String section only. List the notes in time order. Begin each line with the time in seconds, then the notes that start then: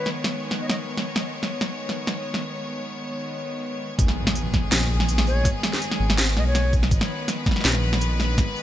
Already playing: D#3 G#3 B3 C#5
3.99 D#3 G#3 B3 G#4
6.91 B4